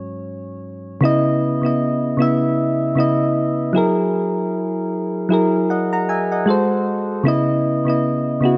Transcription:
0.00 0.98 G#2 medium
0.00 0.98 F#3 medium
0.00 0.98 C#4 medium
0.00 0.20 C#5 loud
1.01 1.38 C#3 loud
1.01 1.39 B3 loud
1.01 1.39 E4 loud
1.05 1.40 D#5 loud
1.62 1.98 C#3 medium
1.62 1.99 B3 medium
1.62 2.00 E4 medium
1.66 2.01 D#5 medium
2.17 2.68 C#3 loud
2.17 2.68 B3 medium
2.17 2.69 E4 medium
2.22 2.70 E5 loud
2.95 3.69 C#3 medium
2.95 3.70 B3 medium
2.95 3.71 E4 medium
3.00 3.72 D#5 loud
3.73 5.00 F#3 loud
3.73 5.00 E4 medium
3.73 5.01 G#4 medium
3.78 5.02 A#4 loud
5.29 5.79 F#3 medium
5.29 5.80 E4 medium
5.29 5.81 G#4 medium
5.34 5.82 A#4 loud
5.70 5.92 D#5 medium
5.70 5.91 F#5 medium
5.93 6.08 F#5 medium
5.93 6.08 A#5 medium
6.09 6.30 E5 medium
6.09 6.30 G#5 medium
6.32 6.69 D#5 medium
6.32 6.68 F#5 medium
6.46 7.11 G#3 medium
6.46 7.12 F#4 medium
6.46 7.13 A4 medium
6.50 7.14 C5 loud
7.24 7.61 C#3 loud
7.24 7.62 B3 loud
7.24 7.62 E4 loud
7.28 7.63 D#5 loud
7.85 8.22 C#3 medium
7.85 8.22 B3 medium
7.85 8.23 E4 medium
7.90 8.24 D#5 loud
8.41 8.58 C#3 loud
8.41 8.58 B3 medium
8.41 8.58 E4 medium
8.45 8.58 F#4 loud

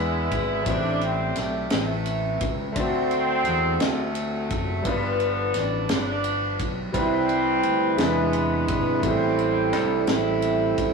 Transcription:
0.00 0.27 E2 loud
0.00 0.62 E3 medium
0.00 0.63 G#3 medium
0.00 0.65 G#3 medium
0.00 0.63 B3 medium
0.00 0.66 B3 medium
0.00 0.66 D4 medium
0.00 0.65 E4 medium
0.00 0.67 E4 loud
0.00 0.67 B4 medium
0.31 0.63 G#1 medium
0.31 kick loud
0.31 ride bell medium
0.62 1.32 A1 loud
0.62 2.70 A3 medium
0.62 2.71 C4 medium
0.62 2.72 E4 medium
0.62 kick loud
0.62 ride bell medium
0.67 1.67 A2 medium
0.67 1.68 G3 medium
0.67 1.02 D4 loud
0.67 2.73 G4 medium
0.67 2.74 C5 medium
1.01 1.38 C4 loud
1.01 ride bell soft
1.36 1.68 B1 medium
1.36 1.72 A3 medium
1.36 snare soft
1.36 ride bell medium
1.70 2.37 A1 medium
1.70 2.73 C3 medium
1.70 2.73 E3 medium
1.70 2.47 A3 medium
1.70 snare loud
1.70 ride bell medium
2.05 ride bell medium
2.41 2.73 C#2 medium
2.41 kick loud
2.41 ride bell medium
2.72 3.42 D2 loud
2.72 4.79 A3 medium
2.72 4.81 C4 medium
2.72 4.81 D4 medium
2.72 kick loud
2.72 ride bell medium
2.77 3.77 D3 medium
2.77 3.78 F#3 medium
2.77 3.78 A3 medium
2.77 3.78 C4 loud
2.77 4.82 F#4 medium
2.77 4.83 C5 medium
3.11 ride bell soft
3.45 3.78 E2 loud
3.45 ride bell medium
3.80 4.47 D2 loud
3.80 4.83 C3 medium
3.80 4.83 F#3 medium
3.80 4.87 A3 medium
3.80 snare loud
3.80 ride bell medium
4.15 ride bell medium
4.50 4.83 F#1 medium
4.50 kick loud
4.50 ride bell medium
4.82 5.51 G1 loud
4.82 6.89 G3 medium
4.82 6.90 B3 medium
4.82 6.91 D4 medium
4.82 kick loud
4.82 ride bell medium
4.86 5.86 G2 medium
4.86 5.87 D3 medium
4.86 5.87 F3 medium
4.86 5.57 B3 loud
4.86 6.92 F4 medium
4.86 6.93 B4 medium
5.20 ride bell soft
5.54 5.87 A1 medium
5.54 snare soft
5.54 ride bell medium
5.58 5.92 D4 loud
5.89 6.56 G1 medium
5.89 6.81 B3 medium
5.89 snare loud
5.89 ride bell medium
5.93 6.81 F3 medium
5.93 6.66 D4 loud
6.24 ride bell medium
6.59 6.92 B1 medium
6.59 kick loud
6.59 ride bell medium
6.92 7.60 C2 loud
6.92 7.95 C3 medium
6.92 7.98 G3 medium
6.92 7.97 G3 medium
6.92 7.99 C4 medium
6.92 7.01 D4 soft
6.92 7.97 E4 medium
6.92 7.97 B4 medium
6.92 kick loud
6.92 ride bell medium
6.97 7.97 E3 medium
6.97 7.97 G3 medium
6.97 7.97 C4 loud
6.97 8.00 B4 medium
7.02 7.98 E4 medium
7.29 ride bell soft
7.63 7.96 D2 medium
7.63 ride bell medium
7.97 8.70 E2 loud
7.97 9.03 C3 medium
7.97 9.04 C3 medium
7.97 8.99 E3 medium
7.97 8.05 G3 medium
7.97 9.02 G#3 medium
7.97 9.03 D4 medium
7.97 9.02 E4 medium
7.97 8.06 A4 medium
7.97 9.03 B4 medium
7.97 snare loud
7.97 ride bell medium
8.02 9.01 D3 medium
8.02 9.01 G#3 medium
8.02 9.07 G#3 medium
8.02 9.05 B3 medium
8.07 9.08 B4 medium
8.33 ride bell medium
8.68 9.01 G#1 medium
8.68 kick loud
8.68 ride bell medium
8.99 9.73 A1 loud
8.99 10.93 A3 medium
8.99 9.10 B3 soft
8.99 10.93 C4 medium
8.99 10.93 E4 medium
8.99 10.93 A4 medium
8.99 kick loud
8.99 ride bell medium
9.03 10.04 A2 medium
9.03 10.06 E3 medium
9.03 10.93 G3 medium
9.03 10.06 G3 medium
9.03 10.93 A3 medium
9.03 10.93 E4 medium
9.03 10.93 G4 medium
9.07 9.75 C4 loud
9.07 10.93 C4 medium
9.07 10.93 C5 medium
9.38 ride bell soft
9.73 10.05 C2 medium
9.73 10.10 D4 medium
9.73 snare soft
9.73 ride bell medium
10.07 10.74 A1 loud
10.07 10.93 G3 medium
10.07 10.93 C4 medium
10.07 10.88 E4 loud
10.07 snare loud
10.07 ride bell medium
10.42 ride bell medium
10.78 10.93 C#2 medium
10.78 kick loud
10.78 ride bell medium

